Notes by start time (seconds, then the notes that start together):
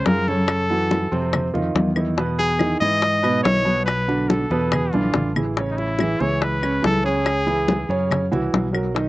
0.06 F#2 F3 F4 G#4 A#4, high bongo, low bongo, high conga
0.28 C#3 C#4 A4 C#5, high conga
0.48 high bongo, high conga, claves
0.70 E3 E4 F#4, high bongo, high conga
0.91 high bongo, high conga
1.12 F2 C3 C4 C5, high bongo, high conga
1.33 high bongo, high conga, low conga, claves
1.54 F2 D#3 D#4 F4, high bongo, high conga, low conga
1.75 E2, high bongo, low bongo, high conga
1.96 D#3 D#4 E4, high conga, claves
2.17 B2 B3 B4, high bongo, high conga
2.39 G#4, high bongo, high conga
2.59 D#3 D#4 E4, high bongo, high conga, claves
2.80 G#2 E3 D#4 E4 D#5, high bongo, high conga
3.02 high bongo, high conga
3.23 B2 B3 B4, high bongo, high conga, claves
3.43 B1 D#3 D#4 E4 C#5, high bongo, low bongo, high conga
3.65 B2 B3 B4, high conga
3.86 B4, high bongo, high conga, claves
4.08 D3 D4 F#4, high bongo, high conga
4.29 A4, high bongo, high conga
4.50 E2 B2 B3 B4, high bongo, high conga
4.71 G#4, high bongo, high conga, low conga, claves
4.92 A#1 D3 E3 D4 F4, high bongo, high conga
5.14 A1, high bongo, low bongo, low conga
5.36 E3 E4 G#4, low conga, claves
5.57 C#3 C#4 C#5, high bongo, high conga
5.71 D#4
5.77 E4, high bongo, high conga
5.99 E3 E4 G#4, high bongo, high conga, claves
6.20 C#2 E3 E4 G#4 C#5, high bongo, high conga
6.42 B4, high bongo, high conga
6.62 C#3 C#4 C#5, high bongo, high conga, claves
6.82 C#2 E3 E4 G#4 A4, high bongo, low bongo, high conga
7.04 C#3 C#4 G#4 C#5
7.26 high bongo, high conga, claves
7.47 E3 E4 G#4, high bongo, high conga
7.68 high bongo, high conga
7.89 F#2 C#3 C#4 C#5, high bongo, high conga
8.11 high bongo, high conga, low conga, claves
8.31 C2 E3 E4 F#4, high bongo, high conga, low conga
8.53 B1, high bongo, low bongo, high conga
8.73 F#3 F#4 A#4, high conga, claves
8.95 D#3 D#4 D#5, high bongo, high conga